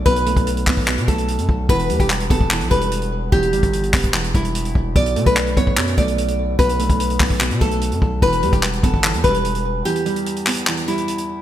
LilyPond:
<<
  \new Staff \with { instrumentName = "Nylon-string guitar" } { \time 4/4 \key e \dorian \tempo 4 = 147 b'2 r8 a'4. | b'8. g'16 r8 a'4 b'4. | g'2 r8 e'4. | d''8. b'16 r8 cis''4 d''4. |
b'2 r8 a'4. | b'8. g'16 r8 a'4 b'4. | g'2 r8 e'4. | }
  \new Staff \with { instrumentName = "Felt piano" } { \clef bass \time 4/4 \key e \dorian <b, a>8 a4 b8 b,8 a4. | e,8 g4 b8 e,8 g4. | e,8 g4 b8 e,8 g4. | b,8 a4 b8 b,8 a4. |
b,8 a4 b8 b,8 a4. | e,8 g4 b8 e,8 g4. | e,8 g4 b8 e,8 g4. | }
  \new Staff \with { instrumentName = "808-style bass" } { \clef bass \time 4/4 \key e \dorian b,,8. b,,8. b,,8. b,16 b,,8. fis,16 b,,8 | e,,8 e,16 e,,8. e,,8. b,,16 e,,4. | e,,8 g,,16 g,,8. e,,4 e,,4 e,,8 | b,,8 b,16 b,,8. b,,8 fis,8 b,,4. |
b,,8. b,,8. b,,8. b,16 b,,8. fis,16 b,,8 | e,,8 e,16 e,,8. e,,16 g,,8 e,16 e,,4. | r1 | }
  \new DrumStaff \with { instrumentName = "Drums" } \drummode { \time 4/4 <hh bd>16 hh16 hh16 <hh bd>16 hh16 hh16 <hc hho bd>16 bd16 <hc hh>16 hh16 <hh bd>16 hh16 hh16 hh16 bd8 | <hh bd>16 hh16 hh16 <hh bd>16 <hc hh>16 hh16 <hh bd>16 bd16 <hc hh>16 hh16 <hh bd>16 hh16 hh16 hh8. | <hh bd>16 hh16 hh16 <hh bd>16 hh16 hh16 <hc hh hho bd>16 <hh bd>16 <hc hh>16 hh16 <hh bd>16 hh16 hh16 hh16 bd8 | <hh bd>16 hh16 hh16 <hh bd>16 <hc hh>16 hh16 <hh bd>16 bd16 <hc hh>16 hh16 <hh bd>16 hh16 hh16 hh8. |
<hh bd>16 hh16 hh16 <hh bd>16 hh16 hh16 <hc hho bd>16 bd16 <hc hh>16 hh16 <hh bd>16 hh16 hh16 hh16 bd8 | <hh bd>16 hh16 hh16 <hh bd>16 <hc hh>16 hh16 <hh bd>16 bd16 <hc hh>16 hh16 <hh bd>16 hh16 hh16 hh8. | hh16 hh16 hh16 hh16 hh16 hh16 <hc hh hho>16 hh16 <hc hh>16 hh16 hh16 hh16 hh16 hh8. | }
>>